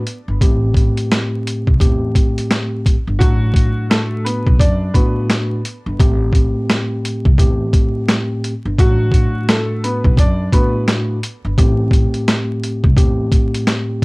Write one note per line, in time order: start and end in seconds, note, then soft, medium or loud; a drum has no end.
0.07 closed hi-hat medium
0.28 0.39 G1 medium
0.41 0.87 A1 loud
0.41 1.72 A2 loud
0.41 1.72 A3 medium
0.41 1.72 C4 medium
0.41 1.72 G4 loud
0.41 kick loud
0.41 closed hi-hat medium
0.75 kick medium
0.75 closed hi-hat medium
0.97 closed hi-hat soft
1.12 snare loud
1.12 closed hi-hat loud
1.47 closed hi-hat medium
1.67 1.79 C2 medium
1.67 kick medium
1.80 2.09 E2 loud
1.80 2.95 A2 medium
1.80 2.95 A3 medium
1.80 2.95 C4 medium
1.80 2.95 G4 loud
1.80 kick medium
1.80 closed hi-hat medium
2.15 kick loud
2.15 closed hi-hat medium
2.38 closed hi-hat medium
2.51 snare loud
2.51 closed hi-hat medium
2.86 kick medium
2.86 closed hi-hat medium
3.07 3.18 G1 medium
3.19 3.66 A1 medium
3.19 4.66 A2 loud
3.19 3.86 F#3 medium
3.19 4.66 A3 medium
3.19 4.66 D4 medium
3.19 3.85 F#4 loud
3.19 4.66 F#4 medium
3.19 kick loud
3.19 closed hi-hat medium
3.54 kick medium
3.54 closed hi-hat medium
3.90 4.22 A3 medium
3.90 4.21 A4 medium
3.90 snare loud
3.90 closed hi-hat medium
4.25 4.57 B3 medium
4.25 4.56 B4 medium
4.25 closed hi-hat medium
4.46 4.61 B1 medium
4.46 kick medium
4.59 4.88 F#2 loud
4.59 4.91 D4 medium
4.59 4.91 D5 medium
4.59 kick medium
4.59 closed hi-hat medium
4.94 5.60 A2 loud
4.94 5.60 A3 medium
4.94 5.26 B3 medium
4.94 5.60 D4 medium
4.94 5.60 F#4 loud
4.94 5.26 B4 medium
4.94 kick medium
4.94 closed hi-hat medium
5.30 snare loud
5.30 closed hi-hat medium
5.65 closed hi-hat medium
5.86 5.97 G1 medium
5.99 6.45 A1 loud
5.99 7.30 A2 medium
5.99 7.30 A3 medium
5.99 7.30 C4 loud
5.99 7.30 G4 loud
5.99 kick loud
5.99 closed hi-hat medium
6.33 kick medium
6.33 closed hi-hat medium
6.70 snare loud
6.70 closed hi-hat loud
7.05 closed hi-hat medium
7.25 7.37 C2 medium
7.25 kick medium
7.38 7.67 E2 loud
7.38 8.53 A2 medium
7.38 8.53 A3 medium
7.38 8.53 C4 medium
7.38 8.53 G4 loud
7.38 kick medium
7.38 closed hi-hat loud
7.73 kick medium
7.73 closed hi-hat medium
8.09 snare loud
8.09 closed hi-hat medium
8.44 closed hi-hat medium
8.65 8.76 G1 medium
8.79 9.24 A1 loud
8.79 10.24 A2 loud
8.79 9.45 F#3 medium
8.79 10.24 A3 medium
8.79 10.24 D4 medium
8.79 10.24 F#4 loud
8.79 9.45 F#4 loud
8.79 kick loud
8.79 closed hi-hat medium
9.12 kick medium
9.12 closed hi-hat medium
9.49 9.81 A3 medium
9.49 9.80 A4 medium
9.49 snare loud
9.49 closed hi-hat loud
9.84 10.15 B3 medium
9.84 10.15 B4 medium
9.84 closed hi-hat medium
10.04 10.19 B1 medium
10.04 kick medium
10.17 10.46 F#2 loud
10.17 10.50 D4 medium
10.17 10.50 D5 medium
10.17 kick medium
10.17 closed hi-hat medium
10.52 11.18 A2 loud
10.52 11.18 A3 medium
10.52 10.85 B3 medium
10.52 11.18 D4 medium
10.52 11.18 F#4 loud
10.52 10.84 B4 medium
10.52 kick medium
10.52 closed hi-hat medium
10.88 snare loud
10.88 closed hi-hat medium
11.23 closed hi-hat medium
11.45 11.55 G1 medium
11.57 12.03 A1 loud
11.57 12.88 A2 medium
11.57 12.88 A3 medium
11.57 12.88 C4 loud
11.57 12.89 G4 loud
11.57 kick loud
11.57 closed hi-hat medium
11.91 kick medium
11.91 closed hi-hat medium
12.14 closed hi-hat soft
12.28 snare loud
12.28 closed hi-hat loud
12.63 closed hi-hat medium
12.84 12.95 C2 medium
12.84 kick medium
12.97 13.25 E2 loud
12.97 14.05 A2 medium
12.97 14.05 A3 medium
12.97 14.05 C4 medium
12.97 14.05 G4 loud
12.97 kick medium
12.97 closed hi-hat loud
13.32 kick medium
13.32 closed hi-hat medium
13.54 closed hi-hat medium
13.67 snare loud
13.67 closed hi-hat medium